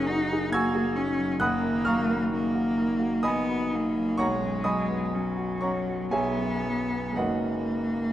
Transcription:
0.00 1.37 F#1 medium
0.00 1.37 F#2 medium
0.00 1.42 C#3 medium
0.00 1.19 F#3 medium
0.00 1.42 A#3 medium
0.00 0.97 D#4 medium
0.00 0.21 G#4 medium
0.00 1.42 C#5 medium
0.00 1.41 F#5 medium
0.00 1.42 A#5 medium
0.00 0.54 C#6 loud
0.00 0.48 D#6 medium
0.00 0.48 F#6 medium
0.00 0.51 A#6 loud
0.07 0.52 D#4 medium
0.07 0.44 F#4 medium
0.33 0.66 G#4 medium
0.50 0.97 A#3 medium
0.50 1.40 G#6 loud
0.54 0.88 F#4 medium
0.54 1.37 G#5 medium
0.54 1.37 C#6 medium
0.54 1.37 E6 medium
0.75 1.09 G#4 medium
0.96 1.40 C#4 medium
0.96 1.32 D#4 medium
1.19 1.40 F#3 medium
1.40 4.16 F#1 medium
1.40 4.17 F#2 medium
1.40 2.31 A#3 medium
1.40 1.82 F#5 medium
1.40 1.83 B5 medium
1.40 1.83 D#6 medium
1.40 1.85 F#6 loud
1.63 1.99 D#3 medium
1.85 2.23 F#3 medium
1.85 3.23 F5 medium
1.85 3.23 A#5 medium
1.85 3.22 C#6 medium
1.85 3.26 F6 loud
2.09 2.46 A#3 medium
2.32 3.29 A#3 medium
2.32 2.70 D#4 medium
2.55 2.93 F#4 medium
2.78 3.16 D#4 medium
2.99 3.38 F#4 medium
3.23 3.63 D#4 medium
3.23 4.15 D#5 medium
3.23 4.15 G#5 medium
3.23 4.15 B5 medium
3.23 4.18 D#6 loud
3.27 3.76 B3 medium
3.48 3.87 F#4 medium
3.72 4.23 A#3 medium
3.72 4.10 D#4 medium
3.96 4.20 F#3 soft
4.18 6.08 B1 medium
4.18 5.16 G#3 medium
4.18 4.62 C#5 medium
4.18 4.62 F#5 medium
4.18 4.63 A#5 medium
4.18 4.65 C#6 loud
4.42 4.80 F#2 medium
4.64 5.04 F#3 medium
4.64 5.58 D#5 medium
4.64 5.58 G#5 medium
4.64 5.58 B5 medium
4.64 5.61 D#6 loud
4.89 5.28 B3 medium
5.12 6.11 F#3 medium
5.12 5.52 C#4 medium
5.37 5.77 F#4 medium
5.61 6.02 C#4 medium
5.61 6.09 C#5 medium
5.61 6.09 F#5 medium
5.61 6.09 A#5 medium
5.61 6.12 C#6 medium
5.87 6.13 F#4 medium
6.11 7.15 B1 medium
6.11 7.18 B3 medium
6.11 7.14 G#4 medium
6.11 7.14 C#5 medium
6.11 7.14 E5 medium
6.11 7.17 G#5 loud
6.38 6.80 F#2 soft
6.64 7.07 F#3 soft
6.92 7.18 B3 soft
7.13 8.13 F#2 medium
7.13 8.13 G#3 soft
7.13 8.13 A#3 soft
7.13 8.13 A#3 medium
7.13 8.13 C#4 soft
7.13 8.13 D#4 soft
7.13 8.13 F#5 medium
7.17 8.13 F#1 medium
7.17 8.13 F#4 medium
7.17 8.13 B4 medium
7.17 8.13 D#5 medium

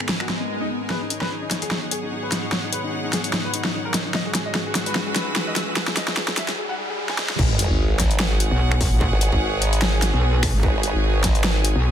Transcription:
0.00 0.87 G#2 medium
0.00 0.87 D#3 medium
0.00 0.90 G#3 medium
0.00 0.87 B3 medium
0.00 0.86 C#4 medium
0.00 1.89 A#4 medium
0.00 1.64 D#5 medium
0.00 2.21 G#5 medium
0.09 0.15 B3 medium
0.09 snare loud
0.09 swell medium
0.20 0.25 F#4 medium
0.20 finger snap medium
0.29 0.35 B3 medium
0.29 snare medium
0.40 0.45 B3 medium
0.50 0.56 B3 medium
0.61 0.66 D#4 medium
0.70 0.76 B3 medium
0.81 0.86 B3 medium
0.90 4.11 G#2 medium
0.90 4.11 D#3 medium
0.90 4.11 F#3 medium
0.90 4.11 B3 medium
0.90 5.10 G#4 medium
0.90 0.96 B4 medium
0.90 snare soft
0.90 riser medium
1.01 1.06 D#4 medium
1.10 1.16 D#4 medium
1.10 5.45 C#5 medium
1.10 closed hi-hat medium
1.21 1.26 B4 medium
1.21 snare soft
1.31 1.37 D#4 medium
1.42 1.47 D#4 medium
1.51 1.57 D#4 medium
1.51 snare soft
1.51 closed hi-hat medium
1.58 5.14 F#5 medium
1.62 1.67 G#4 medium
1.62 closed hi-hat soft
1.71 1.77 D#4 medium
1.71 snare soft
1.82 1.87 D#4 medium
1.91 1.97 G#4 medium
1.91 closed hi-hat medium
2.03 2.08 D#4 medium
2.12 2.18 D#4 medium
2.23 2.28 B4 medium
2.32 2.38 D#4 medium
2.32 snare medium
2.32 closed hi-hat medium
2.43 2.48 D#4 medium
2.52 snare medium
2.63 2.68 D#4 medium
2.72 2.78 B4 medium
2.72 closed hi-hat medium
2.84 2.89 D#4 medium
2.93 2.99 D#4 medium
3.04 3.09 D#4 medium
3.13 3.19 G#4 medium
3.13 snare medium
3.13 closed hi-hat medium
3.24 3.29 D#4 medium
3.24 closed hi-hat soft
3.33 3.39 D#4 medium
3.33 snare medium
3.45 3.49 B4 medium
3.54 3.60 D#4 medium
3.54 closed hi-hat medium
3.65 3.70 D#4 medium
3.65 snare medium
3.74 3.80 D#4 medium
3.85 3.90 A#4 medium
3.94 4.00 D#4 medium
3.94 snare medium
3.94 closed hi-hat medium
4.05 4.10 D#4 medium
4.14 6.55 G#2 medium
4.14 6.55 E3 medium
4.14 6.58 G#3 medium
4.14 6.55 C#4 medium
4.14 6.55 D#4 medium
4.14 4.20 D#5 loud
4.14 snare medium
4.22 6.58 F#4 medium
4.22 4.31 G#4 medium
4.35 4.41 G#4 medium
4.35 snare medium
4.35 closed hi-hat medium
4.46 4.51 D#5 medium
4.55 4.61 G#4 medium
4.55 snare medium
4.61 6.58 B4 medium
4.66 4.71 G#4 medium
4.75 4.81 G#4 medium
4.75 6.58 E6 medium
4.75 snare medium
4.75 closed hi-hat medium
4.86 4.91 B4 medium
4.86 closed hi-hat soft
4.95 5.02 G#4 medium
4.95 snare medium
5.07 5.12 G#4 medium
5.16 5.22 B4 medium
5.16 snare medium
5.16 closed hi-hat medium
5.27 5.32 G#4 medium
5.36 5.42 G#4 medium
5.36 snare medium
5.47 5.52 D#5 medium
5.56 5.62 G#4 medium
5.56 snare medium
5.56 closed hi-hat medium
5.67 5.72 G#4 medium
5.77 snare medium
5.88 5.93 G#4 medium
5.88 snare medium
5.97 6.03 D#5 medium
5.97 snare medium
5.97 closed hi-hat medium
6.08 6.13 G#4 medium
6.08 snare medium
6.17 6.23 G#4 medium
6.17 snare loud
6.28 6.33 G#4 medium
6.28 snare medium
6.37 6.43 E5 medium
6.37 snare medium
6.37 closed hi-hat medium
6.48 6.54 G#4 medium
6.48 snare medium
6.48 closed hi-hat soft
6.58 6.64 G#4 medium
6.69 6.74 F#5 medium
6.78 6.84 G#4 medium
6.89 6.94 G#4 medium
6.98 7.04 G#4 medium
7.09 7.14 G#5 medium
7.09 snare medium
7.19 7.25 G#4 medium
7.19 snare medium
7.30 7.35 G#4 medium
7.30 snare medium
7.39 7.68 G#1 medium
7.39 11.91 G#3 medium
7.39 11.91 D#4 medium
7.39 11.91 F#4 medium
7.39 11.91 G#4 medium
7.39 11.91 B4 medium
7.39 kick loud
7.39 crash loud
7.39 sub drop medium
7.47 11.91 C#5 medium
7.59 closed hi-hat medium
7.70 8.49 G#1 medium
8.00 10.86 F#5 medium
8.00 kick medium
8.00 snare medium
8.00 closed hi-hat medium
8.11 closed hi-hat soft
8.20 snare loud
8.40 closed hi-hat medium
8.51 8.90 B1 medium
8.72 finger snap medium
8.81 kick loud
8.81 open hi-hat loud
8.92 9.10 A#1 loud
9.01 kick loud
9.12 9.31 G#1 loud
9.21 closed hi-hat medium
9.32 10.12 G#1 medium
9.32 kick medium
9.62 closed hi-hat medium
9.73 closed hi-hat soft
9.82 snare loud
10.02 snare medium
10.02 closed hi-hat medium
10.14 10.52 B1 medium
10.43 finger snap medium
10.43 kick loud
10.43 open hi-hat loud
10.54 10.62 G#1 loud
10.63 10.93 G#1 medium
10.63 kick loud
10.74 11.91 G#5 loud
10.83 closed hi-hat medium
10.95 11.74 G#1 loud
11.24 kick medium
11.24 snare medium
11.24 closed hi-hat medium
11.35 closed hi-hat soft
11.44 snare loud
11.65 closed hi-hat medium
11.76 11.91 B1 medium

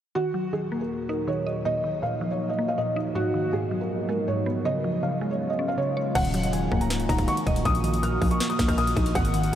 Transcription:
0.15 1.64 D#2 medium
0.15 1.64 A#2 medium
0.15 0.52 D#3 medium
0.15 1.64 F#3 medium
0.15 0.50 F#4 loud
0.34 1.28 F#3 medium
0.53 1.26 D#3 medium
0.53 0.79 G#4 medium
0.72 1.65 A#3 medium
0.81 1.07 A#4 medium
1.09 1.65 D#4 medium
1.09 1.27 A#4 medium
1.28 1.65 D#3 medium
1.28 1.45 C#5 medium
1.47 1.65 D#5 medium
1.65 2.01 A#2 medium
1.65 3.14 A#2 medium
1.65 3.14 F3 medium
1.65 3.14 D#4 medium
1.65 2.01 D#5 loud
1.84 2.78 D#3 medium
2.02 2.77 A#2 medium
2.02 2.29 F5 medium
2.21 3.15 F3 medium
2.31 2.48 C#5 medium
2.50 2.67 D#5 medium
2.59 3.15 A#3 medium
2.68 2.77 F5 medium
2.78 3.15 A#2 medium
2.78 2.95 D#5 medium
2.96 3.15 D#4 medium
3.15 3.51 G#2 medium
3.15 4.64 G#2 medium
3.15 4.64 F#3 medium
3.15 4.64 B3 medium
3.15 3.51 F#4 loud
3.34 4.28 D#3 medium
3.53 4.27 G#2 medium
3.53 3.79 G#4 medium
3.71 4.65 F#3 medium
3.81 4.07 A#4 medium
4.09 4.65 G#3 medium
4.09 4.27 A#4 medium
4.28 4.65 G#2 medium
4.28 4.45 C#5 medium
4.46 4.65 B3 medium
4.65 6.14 C#3 medium
4.65 5.02 C#3 loud
4.65 6.14 G#3 medium
4.65 6.14 F4 medium
4.65 5.01 D#5 loud
4.84 5.78 F3 medium
5.03 5.77 C#3 medium
5.03 5.29 F5 medium
5.21 6.15 G#3 medium
5.31 5.48 C#5 medium
5.50 5.67 D#5 medium
5.59 6.15 C#4 medium
5.68 5.77 F5 medium
5.78 6.15 C#3 medium
5.78 5.95 C#5 medium
5.97 6.15 C#5 medium
6.15 6.69 D#1 loud
6.15 7.64 D#3 medium
6.15 6.52 D#3 loud
6.15 9.12 A#3 medium
6.15 7.64 F#4 medium
6.15 6.51 F#5 loud
6.15 kick loud
6.15 closed hi-hat medium
6.15 crash loud
6.25 closed hi-hat medium
6.34 7.28 F#3 medium
6.34 closed hi-hat medium
6.44 closed hi-hat medium
6.53 7.27 D#3 medium
6.53 6.79 G#5 medium
6.53 closed hi-hat medium
6.72 7.08 C#1 loud
6.72 7.66 A#3 medium
6.72 kick loud
6.81 7.07 A#5 medium
6.81 closed hi-hat medium
6.90 snare loud
6.90 closed hi-hat medium
7.00 closed hi-hat medium
7.09 7.27 D#1 loud
7.09 7.65 D#4 medium
7.09 7.27 A#5 medium
7.09 kick loud
7.09 closed hi-hat medium
7.18 kick loud
7.18 closed hi-hat medium
7.28 7.65 D#3 medium
7.28 7.45 C#6 medium
7.28 closed hi-hat medium
7.37 closed hi-hat medium
7.47 7.65 D#1 loud
7.47 7.65 D#5 medium
7.47 kick loud
7.47 closed hi-hat medium
7.56 closed hi-hat medium
7.65 8.19 A#1 loud
7.65 8.01 A#2 loud
7.65 9.14 F4 medium
7.65 9.14 D#5 loud
7.65 8.01 D#6 loud
7.65 kick loud
7.65 closed hi-hat medium
7.75 closed hi-hat medium
7.84 8.78 D#3 medium
7.84 closed hi-hat medium
7.94 closed hi-hat medium
8.03 8.77 A#2 medium
8.03 8.29 F6 medium
8.03 closed hi-hat medium
8.22 8.40 A#1 loud
8.22 9.15 F3 medium
8.22 kick loud
8.22 open hi-hat medium
8.31 8.48 C#6 medium
8.31 closed hi-hat medium
8.40 snare loud
8.40 closed hi-hat medium
8.50 8.67 D#6 medium
8.50 closed hi-hat medium
8.59 8.95 A#1 loud
8.59 9.15 A#3 medium
8.59 kick loud
8.59 snare loud
8.59 closed hi-hat medium
8.68 8.77 F6 medium
8.68 kick loud
8.68 closed hi-hat medium
8.78 9.15 A#2 medium
8.78 8.95 D#6 medium
8.78 closed hi-hat medium
8.87 closed hi-hat medium
8.97 9.15 A#1 loud
8.97 9.15 D#4 medium
8.97 kick loud
8.97 closed hi-hat medium
9.06 closed hi-hat medium
9.15 9.51 G#1 loud
9.15 9.52 G#2 medium
9.15 9.55 G#3 medium
9.15 9.55 F#4 medium
9.15 9.55 B4 medium
9.15 9.50 F#5 loud
9.15 kick loud
9.15 closed hi-hat medium
9.25 closed hi-hat medium
9.34 9.55 D#3 medium
9.34 closed hi-hat medium
9.43 closed hi-hat medium

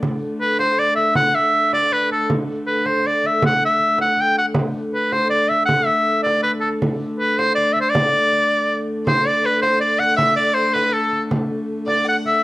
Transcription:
0.03 4.56 D3 medium
0.03 4.55 A3 medium
0.03 frame drum medium
0.23 frame drum soft
0.41 0.58 B4 medium
0.59 0.81 C5 medium
0.59 frame drum medium
0.79 0.95 D5 medium
0.79 frame drum soft
0.96 1.14 E5 medium
0.96 frame drum soft
1.15 1.37 F#5 loud
1.15 frame drum medium
1.34 1.73 E5 medium
1.34 frame drum soft
1.73 1.94 D5 medium
1.73 frame drum medium
1.92 2.11 B4 medium
1.92 frame drum soft
2.11 2.29 A4 medium
2.11 frame drum soft
2.30 frame drum medium
2.48 frame drum soft
2.67 2.87 B4 medium
2.86 3.08 C5 medium
2.86 frame drum medium
3.04 3.28 D5 medium
3.04 frame drum soft
3.24 3.44 E5 medium
3.24 frame drum soft
3.42 3.62 F#5 medium
3.42 frame drum medium
3.61 frame drum soft
3.65 3.98 E5 medium
3.80 frame drum soft
3.98 4.22 F#5 medium
3.98 frame drum medium
4.17 4.38 G5 medium
4.17 frame drum soft
4.38 4.46 F#5 medium
4.54 9.08 D3 medium
4.54 9.07 A3 medium
4.54 frame drum medium
4.74 frame drum soft
4.94 5.14 B4 medium
5.12 5.29 C5 medium
5.12 frame drum medium
5.30 5.50 D5 medium
5.30 frame drum soft
5.49 5.65 E5 medium
5.49 frame drum soft
5.66 5.87 F#5 loud
5.66 frame drum medium
5.85 6.22 E5 loud
5.85 frame drum soft
6.23 6.41 D5 medium
6.23 frame drum medium
6.43 6.52 B4 medium
6.43 frame drum soft
6.60 6.69 A4 medium
6.60 frame drum soft
6.82 frame drum medium
7.02 frame drum soft
7.20 7.40 B4 medium
7.38 7.55 C5 medium
7.38 frame drum medium
7.55 7.75 D5 medium
7.55 frame drum soft
7.73 7.80 E5 medium
7.73 frame drum soft
7.81 7.92 C5 medium
7.90 8.86 D5 medium
7.95 frame drum medium
8.14 frame drum soft
8.32 frame drum soft
9.06 12.44 D3 medium
9.06 12.44 A3 medium
9.06 9.26 C5 medium
9.06 9.29 C5 medium
9.06 frame drum medium
9.25 9.42 D5 medium
9.25 9.47 D5 medium
9.42 9.60 B4 medium
9.42 9.61 B4 medium
9.62 9.79 C5 medium
9.62 9.80 C5 medium
9.62 frame drum medium
9.80 10.00 D5 medium
9.80 10.01 D5 medium
9.98 10.18 F#5 medium
9.98 10.16 F#5 loud
9.98 frame drum soft
10.16 10.38 E5 medium
10.16 10.35 E5 loud
10.16 frame drum medium
10.36 10.56 D5 medium
10.54 10.75 C5 medium
10.54 10.74 C5 medium
10.73 10.95 B4 medium
10.73 frame drum medium
10.93 11.22 A4 medium
11.12 frame drum soft
11.31 frame drum medium
11.86 12.06 D5 medium
11.86 12.05 D5 medium
11.86 frame drum medium
12.05 12.44 F#5 medium
12.05 12.16 F#5 medium
12.25 12.43 E5 medium
12.25 frame drum soft

